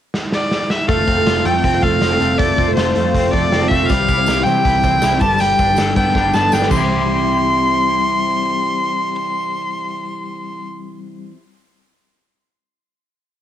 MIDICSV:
0, 0, Header, 1, 6, 480
1, 0, Start_track
1, 0, Key_signature, 0, "major"
1, 0, Tempo, 375940
1, 1135, Time_signature, 4, 2, 24, 8
1, 17132, End_track
2, 0, Start_track
2, 0, Title_t, "Violin"
2, 0, Program_c, 0, 40
2, 424, Note_on_c, 0, 74, 73
2, 900, Note_on_c, 0, 76, 78
2, 919, Note_off_c, 0, 74, 0
2, 1130, Note_off_c, 0, 76, 0
2, 1137, Note_on_c, 0, 77, 100
2, 1855, Note_on_c, 0, 79, 93
2, 1874, Note_off_c, 0, 77, 0
2, 2330, Note_on_c, 0, 77, 97
2, 2349, Note_off_c, 0, 79, 0
2, 3033, Note_on_c, 0, 74, 96
2, 3052, Note_off_c, 0, 77, 0
2, 3507, Note_off_c, 0, 74, 0
2, 3514, Note_on_c, 0, 72, 86
2, 4225, Note_on_c, 0, 74, 98
2, 4244, Note_off_c, 0, 72, 0
2, 4694, Note_on_c, 0, 76, 95
2, 4713, Note_off_c, 0, 74, 0
2, 4931, Note_on_c, 0, 77, 107
2, 4950, Note_off_c, 0, 76, 0
2, 5664, Note_on_c, 0, 79, 104
2, 5683, Note_off_c, 0, 77, 0
2, 6638, Note_on_c, 0, 81, 116
2, 6657, Note_off_c, 0, 79, 0
2, 6892, Note_on_c, 0, 79, 117
2, 6911, Note_off_c, 0, 81, 0
2, 7599, Note_off_c, 0, 79, 0
2, 7607, Note_on_c, 0, 79, 102
2, 8094, Note_on_c, 0, 81, 101
2, 8113, Note_off_c, 0, 79, 0
2, 8339, Note_on_c, 0, 79, 93
2, 8358, Note_off_c, 0, 81, 0
2, 8566, Note_off_c, 0, 79, 0
2, 8574, Note_on_c, 0, 84, 102
2, 13622, Note_off_c, 0, 84, 0
2, 17132, End_track
3, 0, Start_track
3, 0, Title_t, "Clean electric guitar"
3, 0, Program_c, 1, 27
3, 1130, Note_on_c, 1, 57, 91
3, 1373, Note_on_c, 1, 60, 49
3, 1616, Note_on_c, 1, 65, 62
3, 1844, Note_off_c, 1, 57, 0
3, 1860, Note_on_c, 1, 57, 62
3, 2088, Note_off_c, 1, 60, 0
3, 2093, Note_on_c, 1, 60, 61
3, 2321, Note_off_c, 1, 57, 0
3, 2337, Note_on_c, 1, 57, 62
3, 2576, Note_off_c, 1, 60, 0
3, 2581, Note_on_c, 1, 60, 63
3, 2803, Note_off_c, 1, 57, 0
3, 2818, Note_on_c, 1, 57, 53
3, 3036, Note_off_c, 1, 57, 0
3, 3052, Note_on_c, 1, 57, 87
3, 3297, Note_off_c, 1, 60, 0
3, 3303, Note_on_c, 1, 60, 60
3, 3524, Note_off_c, 1, 65, 0
3, 3539, Note_on_c, 1, 65, 71
3, 3761, Note_off_c, 1, 57, 0
3, 3777, Note_on_c, 1, 57, 59
3, 4021, Note_off_c, 1, 60, 0
3, 4026, Note_on_c, 1, 60, 59
3, 4239, Note_off_c, 1, 57, 0
3, 4254, Note_on_c, 1, 57, 59
3, 4483, Note_off_c, 1, 60, 0
3, 4499, Note_on_c, 1, 60, 62
3, 4730, Note_off_c, 1, 57, 0
3, 4745, Note_on_c, 1, 57, 62
3, 4985, Note_on_c, 1, 55, 96
3, 5025, Note_off_c, 1, 60, 0
3, 5025, Note_off_c, 1, 65, 0
3, 5028, Note_off_c, 1, 57, 0
3, 5220, Note_on_c, 1, 64, 57
3, 5468, Note_on_c, 1, 67, 65
3, 5707, Note_on_c, 1, 60, 61
3, 5929, Note_off_c, 1, 64, 0
3, 5944, Note_on_c, 1, 64, 62
3, 6173, Note_off_c, 1, 60, 0
3, 6189, Note_on_c, 1, 60, 60
3, 6410, Note_off_c, 1, 64, 0
3, 6425, Note_on_c, 1, 64, 61
3, 6655, Note_off_c, 1, 55, 0
3, 6660, Note_on_c, 1, 55, 76
3, 6707, Note_off_c, 1, 64, 0
3, 6709, Note_off_c, 1, 60, 0
3, 6905, Note_off_c, 1, 55, 0
3, 6910, Note_on_c, 1, 55, 89
3, 7149, Note_on_c, 1, 62, 62
3, 7379, Note_off_c, 1, 67, 0
3, 7384, Note_on_c, 1, 69, 72
3, 7624, Note_on_c, 1, 59, 63
3, 7852, Note_off_c, 1, 62, 0
3, 7867, Note_on_c, 1, 62, 67
3, 8085, Note_off_c, 1, 59, 0
3, 8101, Note_on_c, 1, 59, 69
3, 8323, Note_off_c, 1, 62, 0
3, 8339, Note_on_c, 1, 62, 57
3, 8522, Note_off_c, 1, 55, 0
3, 8527, Note_on_c, 1, 55, 81
3, 8575, Note_off_c, 1, 62, 0
3, 8576, Note_off_c, 1, 59, 0
3, 8577, Note_off_c, 1, 69, 0
3, 8592, Note_on_c, 1, 60, 81
3, 8644, Note_on_c, 1, 64, 83
3, 8691, Note_on_c, 1, 67, 92
3, 14434, Note_off_c, 1, 55, 0
3, 14499, Note_off_c, 1, 60, 0
3, 14552, Note_off_c, 1, 64, 0
3, 14598, Note_off_c, 1, 67, 0
3, 17132, End_track
4, 0, Start_track
4, 0, Title_t, "Twelve-string acoustic guitar"
4, 0, Program_c, 2, 25
4, 1129, Note_on_c, 2, 57, 58
4, 1144, Note_on_c, 2, 60, 67
4, 1154, Note_on_c, 2, 65, 56
4, 1164, Note_on_c, 2, 69, 65
4, 1475, Note_off_c, 2, 69, 0
4, 1491, Note_on_c, 2, 69, 57
4, 1492, Note_off_c, 2, 57, 0
4, 1495, Note_off_c, 2, 65, 0
4, 1500, Note_off_c, 2, 60, 0
4, 1510, Note_on_c, 2, 65, 47
4, 1523, Note_on_c, 2, 60, 41
4, 1853, Note_off_c, 2, 69, 0
4, 1854, Note_off_c, 2, 60, 0
4, 1860, Note_on_c, 2, 53, 77
4, 1861, Note_on_c, 2, 57, 82
4, 1863, Note_off_c, 2, 65, 0
4, 1869, Note_on_c, 2, 60, 76
4, 1877, Note_on_c, 2, 65, 78
4, 1880, Note_on_c, 2, 69, 82
4, 2314, Note_off_c, 2, 53, 0
4, 2319, Note_off_c, 2, 57, 0
4, 2329, Note_off_c, 2, 65, 0
4, 2329, Note_on_c, 2, 53, 73
4, 2331, Note_off_c, 2, 60, 0
4, 2332, Note_off_c, 2, 69, 0
4, 2335, Note_on_c, 2, 57, 73
4, 2336, Note_on_c, 2, 60, 78
4, 2344, Note_on_c, 2, 65, 82
4, 2347, Note_on_c, 2, 69, 84
4, 2677, Note_off_c, 2, 69, 0
4, 2683, Note_off_c, 2, 65, 0
4, 2686, Note_off_c, 2, 60, 0
4, 2689, Note_off_c, 2, 57, 0
4, 2692, Note_on_c, 2, 69, 64
4, 2693, Note_off_c, 2, 53, 0
4, 2698, Note_on_c, 2, 65, 60
4, 2701, Note_on_c, 2, 60, 51
4, 2704, Note_on_c, 2, 57, 49
4, 2708, Note_on_c, 2, 53, 54
4, 3037, Note_off_c, 2, 57, 0
4, 3048, Note_off_c, 2, 60, 0
4, 3052, Note_on_c, 2, 57, 65
4, 3054, Note_off_c, 2, 69, 0
4, 3057, Note_off_c, 2, 65, 0
4, 3062, Note_off_c, 2, 53, 0
4, 3064, Note_on_c, 2, 60, 65
4, 3075, Note_on_c, 2, 65, 68
4, 3083, Note_on_c, 2, 69, 65
4, 3392, Note_off_c, 2, 69, 0
4, 3407, Note_on_c, 2, 69, 58
4, 3409, Note_off_c, 2, 65, 0
4, 3414, Note_off_c, 2, 57, 0
4, 3420, Note_off_c, 2, 60, 0
4, 3424, Note_on_c, 2, 65, 51
4, 3440, Note_on_c, 2, 60, 43
4, 3762, Note_off_c, 2, 60, 0
4, 3764, Note_on_c, 2, 53, 81
4, 3765, Note_off_c, 2, 65, 0
4, 3769, Note_on_c, 2, 57, 82
4, 3772, Note_off_c, 2, 69, 0
4, 3778, Note_on_c, 2, 60, 82
4, 3780, Note_on_c, 2, 65, 90
4, 3785, Note_on_c, 2, 69, 99
4, 4226, Note_off_c, 2, 53, 0
4, 4238, Note_off_c, 2, 57, 0
4, 4242, Note_on_c, 2, 53, 85
4, 4243, Note_off_c, 2, 60, 0
4, 4246, Note_off_c, 2, 65, 0
4, 4253, Note_on_c, 2, 57, 85
4, 4254, Note_off_c, 2, 69, 0
4, 4258, Note_on_c, 2, 60, 72
4, 4262, Note_on_c, 2, 65, 85
4, 4269, Note_on_c, 2, 69, 84
4, 4596, Note_off_c, 2, 69, 0
4, 4602, Note_off_c, 2, 65, 0
4, 4605, Note_off_c, 2, 60, 0
4, 4606, Note_off_c, 2, 57, 0
4, 4609, Note_off_c, 2, 53, 0
4, 4611, Note_on_c, 2, 69, 62
4, 4617, Note_on_c, 2, 65, 68
4, 4620, Note_on_c, 2, 60, 60
4, 4621, Note_on_c, 2, 57, 57
4, 4631, Note_on_c, 2, 53, 55
4, 4961, Note_off_c, 2, 57, 0
4, 4963, Note_off_c, 2, 60, 0
4, 4966, Note_on_c, 2, 55, 65
4, 4973, Note_off_c, 2, 69, 0
4, 4976, Note_off_c, 2, 65, 0
4, 4978, Note_on_c, 2, 60, 63
4, 4983, Note_off_c, 2, 53, 0
4, 4989, Note_on_c, 2, 64, 72
4, 4998, Note_on_c, 2, 72, 67
4, 5314, Note_off_c, 2, 72, 0
4, 5326, Note_off_c, 2, 64, 0
4, 5329, Note_on_c, 2, 72, 55
4, 5331, Note_off_c, 2, 55, 0
4, 5337, Note_off_c, 2, 60, 0
4, 5341, Note_on_c, 2, 64, 48
4, 5351, Note_on_c, 2, 60, 50
4, 5357, Note_on_c, 2, 55, 46
4, 5678, Note_off_c, 2, 55, 0
4, 5678, Note_on_c, 2, 48, 87
4, 5680, Note_off_c, 2, 60, 0
4, 5685, Note_off_c, 2, 64, 0
4, 5685, Note_on_c, 2, 52, 77
4, 5688, Note_off_c, 2, 72, 0
4, 5694, Note_on_c, 2, 55, 76
4, 5696, Note_on_c, 2, 60, 86
4, 5701, Note_on_c, 2, 64, 90
4, 5704, Note_on_c, 2, 72, 84
4, 6151, Note_off_c, 2, 48, 0
4, 6158, Note_off_c, 2, 52, 0
4, 6166, Note_off_c, 2, 60, 0
4, 6167, Note_on_c, 2, 48, 76
4, 6170, Note_off_c, 2, 64, 0
4, 6172, Note_off_c, 2, 55, 0
4, 6173, Note_on_c, 2, 52, 78
4, 6175, Note_off_c, 2, 72, 0
4, 6177, Note_on_c, 2, 55, 77
4, 6182, Note_on_c, 2, 60, 87
4, 6185, Note_on_c, 2, 64, 89
4, 6190, Note_on_c, 2, 72, 92
4, 6514, Note_off_c, 2, 72, 0
4, 6519, Note_off_c, 2, 64, 0
4, 6524, Note_off_c, 2, 60, 0
4, 6526, Note_off_c, 2, 55, 0
4, 6529, Note_on_c, 2, 72, 67
4, 6530, Note_off_c, 2, 48, 0
4, 6533, Note_off_c, 2, 52, 0
4, 6534, Note_on_c, 2, 64, 60
4, 6540, Note_on_c, 2, 60, 68
4, 6541, Note_on_c, 2, 55, 61
4, 6550, Note_on_c, 2, 48, 56
4, 6553, Note_on_c, 2, 52, 63
4, 6632, Note_off_c, 2, 55, 0
4, 6647, Note_on_c, 2, 55, 77
4, 6651, Note_off_c, 2, 72, 0
4, 6653, Note_off_c, 2, 60, 0
4, 6654, Note_off_c, 2, 64, 0
4, 6658, Note_on_c, 2, 62, 82
4, 6661, Note_off_c, 2, 48, 0
4, 6663, Note_off_c, 2, 52, 0
4, 6664, Note_on_c, 2, 69, 81
4, 6673, Note_on_c, 2, 71, 86
4, 7226, Note_off_c, 2, 71, 0
4, 7241, Note_on_c, 2, 71, 54
4, 7246, Note_off_c, 2, 69, 0
4, 7255, Note_off_c, 2, 62, 0
4, 7262, Note_on_c, 2, 69, 53
4, 7279, Note_on_c, 2, 62, 45
4, 7300, Note_off_c, 2, 55, 0
4, 7597, Note_off_c, 2, 62, 0
4, 7601, Note_off_c, 2, 69, 0
4, 7606, Note_off_c, 2, 71, 0
4, 7607, Note_on_c, 2, 55, 73
4, 7612, Note_on_c, 2, 62, 83
4, 7617, Note_on_c, 2, 69, 83
4, 7623, Note_on_c, 2, 71, 86
4, 8070, Note_off_c, 2, 62, 0
4, 8074, Note_off_c, 2, 55, 0
4, 8077, Note_off_c, 2, 69, 0
4, 8079, Note_on_c, 2, 55, 79
4, 8085, Note_off_c, 2, 71, 0
4, 8085, Note_on_c, 2, 62, 83
4, 8092, Note_on_c, 2, 69, 79
4, 8101, Note_on_c, 2, 71, 89
4, 8422, Note_off_c, 2, 71, 0
4, 8432, Note_off_c, 2, 69, 0
4, 8437, Note_on_c, 2, 71, 66
4, 8438, Note_off_c, 2, 62, 0
4, 8441, Note_off_c, 2, 55, 0
4, 8447, Note_on_c, 2, 69, 60
4, 8453, Note_on_c, 2, 62, 60
4, 8457, Note_on_c, 2, 55, 53
4, 8491, Note_on_c, 2, 48, 88
4, 8552, Note_on_c, 2, 52, 86
4, 8564, Note_off_c, 2, 71, 0
4, 8569, Note_off_c, 2, 69, 0
4, 8572, Note_off_c, 2, 62, 0
4, 8574, Note_off_c, 2, 55, 0
4, 8598, Note_on_c, 2, 55, 87
4, 8648, Note_on_c, 2, 60, 88
4, 8689, Note_on_c, 2, 64, 85
4, 8730, Note_on_c, 2, 72, 86
4, 14398, Note_off_c, 2, 48, 0
4, 14459, Note_off_c, 2, 52, 0
4, 14505, Note_off_c, 2, 55, 0
4, 14555, Note_off_c, 2, 60, 0
4, 14596, Note_off_c, 2, 64, 0
4, 14638, Note_off_c, 2, 72, 0
4, 17132, End_track
5, 0, Start_track
5, 0, Title_t, "Picked electric bass"
5, 0, Program_c, 3, 34
5, 1136, Note_on_c, 3, 29, 94
5, 1333, Note_off_c, 3, 29, 0
5, 1380, Note_on_c, 3, 29, 93
5, 1575, Note_off_c, 3, 29, 0
5, 1623, Note_on_c, 3, 29, 84
5, 1817, Note_off_c, 3, 29, 0
5, 1854, Note_on_c, 3, 41, 93
5, 2052, Note_off_c, 3, 41, 0
5, 2096, Note_on_c, 3, 29, 97
5, 2293, Note_off_c, 3, 29, 0
5, 2336, Note_on_c, 3, 29, 93
5, 2533, Note_off_c, 3, 29, 0
5, 2573, Note_on_c, 3, 29, 79
5, 2771, Note_off_c, 3, 29, 0
5, 2814, Note_on_c, 3, 29, 90
5, 3012, Note_off_c, 3, 29, 0
5, 3060, Note_on_c, 3, 29, 100
5, 3255, Note_off_c, 3, 29, 0
5, 3299, Note_on_c, 3, 29, 90
5, 3494, Note_off_c, 3, 29, 0
5, 3534, Note_on_c, 3, 29, 87
5, 3732, Note_off_c, 3, 29, 0
5, 3780, Note_on_c, 3, 41, 85
5, 3975, Note_off_c, 3, 41, 0
5, 4017, Note_on_c, 3, 29, 95
5, 4214, Note_off_c, 3, 29, 0
5, 4262, Note_on_c, 3, 29, 94
5, 4456, Note_off_c, 3, 29, 0
5, 4497, Note_on_c, 3, 29, 83
5, 4693, Note_off_c, 3, 29, 0
5, 4740, Note_on_c, 3, 29, 99
5, 4935, Note_off_c, 3, 29, 0
5, 4983, Note_on_c, 3, 36, 103
5, 5176, Note_off_c, 3, 36, 0
5, 5220, Note_on_c, 3, 36, 95
5, 5415, Note_off_c, 3, 36, 0
5, 5453, Note_on_c, 3, 36, 96
5, 5651, Note_off_c, 3, 36, 0
5, 5693, Note_on_c, 3, 48, 90
5, 5890, Note_off_c, 3, 48, 0
5, 5941, Note_on_c, 3, 36, 103
5, 6135, Note_off_c, 3, 36, 0
5, 6178, Note_on_c, 3, 36, 91
5, 6373, Note_off_c, 3, 36, 0
5, 6421, Note_on_c, 3, 36, 81
5, 6615, Note_off_c, 3, 36, 0
5, 6660, Note_on_c, 3, 31, 89
5, 7050, Note_off_c, 3, 31, 0
5, 7145, Note_on_c, 3, 31, 98
5, 7336, Note_off_c, 3, 31, 0
5, 7384, Note_on_c, 3, 31, 101
5, 7576, Note_off_c, 3, 31, 0
5, 7616, Note_on_c, 3, 43, 106
5, 7811, Note_off_c, 3, 43, 0
5, 7857, Note_on_c, 3, 31, 98
5, 8052, Note_off_c, 3, 31, 0
5, 8102, Note_on_c, 3, 31, 91
5, 8294, Note_off_c, 3, 31, 0
5, 8345, Note_on_c, 3, 31, 98
5, 8536, Note_off_c, 3, 31, 0
5, 8570, Note_on_c, 3, 36, 101
5, 14427, Note_off_c, 3, 36, 0
5, 17132, End_track
6, 0, Start_track
6, 0, Title_t, "Drums"
6, 179, Note_on_c, 9, 38, 74
6, 306, Note_off_c, 9, 38, 0
6, 413, Note_on_c, 9, 38, 76
6, 541, Note_off_c, 9, 38, 0
6, 657, Note_on_c, 9, 38, 85
6, 785, Note_off_c, 9, 38, 0
6, 894, Note_on_c, 9, 38, 87
6, 1022, Note_off_c, 9, 38, 0
6, 1134, Note_on_c, 9, 36, 119
6, 1136, Note_on_c, 9, 42, 81
6, 1262, Note_off_c, 9, 36, 0
6, 1263, Note_off_c, 9, 42, 0
6, 1373, Note_on_c, 9, 42, 65
6, 1375, Note_on_c, 9, 36, 87
6, 1500, Note_off_c, 9, 42, 0
6, 1503, Note_off_c, 9, 36, 0
6, 1614, Note_on_c, 9, 42, 91
6, 1623, Note_on_c, 9, 38, 85
6, 1741, Note_off_c, 9, 42, 0
6, 1751, Note_off_c, 9, 38, 0
6, 1853, Note_on_c, 9, 42, 57
6, 1980, Note_off_c, 9, 42, 0
6, 2095, Note_on_c, 9, 36, 86
6, 2096, Note_on_c, 9, 42, 83
6, 2223, Note_off_c, 9, 36, 0
6, 2224, Note_off_c, 9, 42, 0
6, 2336, Note_on_c, 9, 36, 83
6, 2338, Note_on_c, 9, 42, 56
6, 2463, Note_off_c, 9, 36, 0
6, 2465, Note_off_c, 9, 42, 0
6, 2573, Note_on_c, 9, 38, 87
6, 2578, Note_on_c, 9, 42, 95
6, 2700, Note_off_c, 9, 38, 0
6, 2706, Note_off_c, 9, 42, 0
6, 2809, Note_on_c, 9, 42, 62
6, 2936, Note_off_c, 9, 42, 0
6, 3054, Note_on_c, 9, 42, 98
6, 3057, Note_on_c, 9, 36, 120
6, 3182, Note_off_c, 9, 42, 0
6, 3184, Note_off_c, 9, 36, 0
6, 3298, Note_on_c, 9, 36, 86
6, 3301, Note_on_c, 9, 42, 62
6, 3426, Note_off_c, 9, 36, 0
6, 3429, Note_off_c, 9, 42, 0
6, 3534, Note_on_c, 9, 42, 95
6, 3543, Note_on_c, 9, 38, 87
6, 3661, Note_off_c, 9, 42, 0
6, 3671, Note_off_c, 9, 38, 0
6, 3774, Note_on_c, 9, 42, 56
6, 3902, Note_off_c, 9, 42, 0
6, 4015, Note_on_c, 9, 36, 81
6, 4019, Note_on_c, 9, 42, 86
6, 4143, Note_off_c, 9, 36, 0
6, 4146, Note_off_c, 9, 42, 0
6, 4256, Note_on_c, 9, 36, 83
6, 4260, Note_on_c, 9, 42, 58
6, 4384, Note_off_c, 9, 36, 0
6, 4387, Note_off_c, 9, 42, 0
6, 4499, Note_on_c, 9, 38, 93
6, 4504, Note_on_c, 9, 42, 81
6, 4627, Note_off_c, 9, 38, 0
6, 4632, Note_off_c, 9, 42, 0
6, 4737, Note_on_c, 9, 42, 69
6, 4739, Note_on_c, 9, 36, 88
6, 4864, Note_off_c, 9, 42, 0
6, 4867, Note_off_c, 9, 36, 0
6, 4962, Note_on_c, 9, 54, 50
6, 4977, Note_on_c, 9, 42, 91
6, 4978, Note_on_c, 9, 36, 112
6, 5090, Note_off_c, 9, 54, 0
6, 5105, Note_off_c, 9, 36, 0
6, 5105, Note_off_c, 9, 42, 0
6, 5213, Note_on_c, 9, 54, 45
6, 5216, Note_on_c, 9, 42, 77
6, 5218, Note_on_c, 9, 36, 83
6, 5341, Note_off_c, 9, 54, 0
6, 5343, Note_off_c, 9, 42, 0
6, 5345, Note_off_c, 9, 36, 0
6, 5444, Note_on_c, 9, 54, 81
6, 5462, Note_on_c, 9, 42, 87
6, 5471, Note_on_c, 9, 38, 99
6, 5572, Note_off_c, 9, 54, 0
6, 5589, Note_off_c, 9, 42, 0
6, 5599, Note_off_c, 9, 38, 0
6, 5690, Note_on_c, 9, 54, 29
6, 5702, Note_on_c, 9, 42, 52
6, 5818, Note_off_c, 9, 54, 0
6, 5830, Note_off_c, 9, 42, 0
6, 5938, Note_on_c, 9, 36, 93
6, 5942, Note_on_c, 9, 42, 85
6, 6066, Note_off_c, 9, 36, 0
6, 6070, Note_off_c, 9, 42, 0
6, 6172, Note_on_c, 9, 42, 63
6, 6172, Note_on_c, 9, 54, 51
6, 6175, Note_on_c, 9, 36, 81
6, 6299, Note_off_c, 9, 54, 0
6, 6300, Note_off_c, 9, 42, 0
6, 6303, Note_off_c, 9, 36, 0
6, 6406, Note_on_c, 9, 54, 92
6, 6410, Note_on_c, 9, 38, 96
6, 6415, Note_on_c, 9, 42, 90
6, 6534, Note_off_c, 9, 54, 0
6, 6538, Note_off_c, 9, 38, 0
6, 6543, Note_off_c, 9, 42, 0
6, 6645, Note_on_c, 9, 42, 62
6, 6648, Note_on_c, 9, 54, 54
6, 6656, Note_on_c, 9, 36, 97
6, 6773, Note_off_c, 9, 42, 0
6, 6775, Note_off_c, 9, 54, 0
6, 6783, Note_off_c, 9, 36, 0
6, 6873, Note_on_c, 9, 54, 57
6, 6895, Note_on_c, 9, 42, 95
6, 7001, Note_off_c, 9, 54, 0
6, 7023, Note_off_c, 9, 42, 0
6, 7130, Note_on_c, 9, 54, 50
6, 7138, Note_on_c, 9, 36, 89
6, 7142, Note_on_c, 9, 42, 74
6, 7257, Note_off_c, 9, 54, 0
6, 7266, Note_off_c, 9, 36, 0
6, 7270, Note_off_c, 9, 42, 0
6, 7360, Note_on_c, 9, 54, 81
6, 7373, Note_on_c, 9, 42, 99
6, 7382, Note_on_c, 9, 38, 103
6, 7487, Note_off_c, 9, 54, 0
6, 7501, Note_off_c, 9, 42, 0
6, 7510, Note_off_c, 9, 38, 0
6, 7609, Note_on_c, 9, 42, 57
6, 7614, Note_on_c, 9, 36, 93
6, 7737, Note_off_c, 9, 42, 0
6, 7741, Note_off_c, 9, 36, 0
6, 7853, Note_on_c, 9, 36, 96
6, 7862, Note_on_c, 9, 38, 56
6, 7980, Note_off_c, 9, 36, 0
6, 7990, Note_off_c, 9, 38, 0
6, 8087, Note_on_c, 9, 54, 60
6, 8097, Note_on_c, 9, 38, 73
6, 8215, Note_off_c, 9, 54, 0
6, 8225, Note_off_c, 9, 38, 0
6, 8323, Note_on_c, 9, 54, 99
6, 8339, Note_on_c, 9, 38, 75
6, 8450, Note_off_c, 9, 54, 0
6, 8454, Note_off_c, 9, 38, 0
6, 8454, Note_on_c, 9, 38, 77
6, 8564, Note_on_c, 9, 54, 87
6, 8565, Note_on_c, 9, 49, 87
6, 8569, Note_on_c, 9, 36, 98
6, 8582, Note_off_c, 9, 38, 0
6, 8691, Note_off_c, 9, 54, 0
6, 8693, Note_off_c, 9, 49, 0
6, 8696, Note_off_c, 9, 36, 0
6, 17132, End_track
0, 0, End_of_file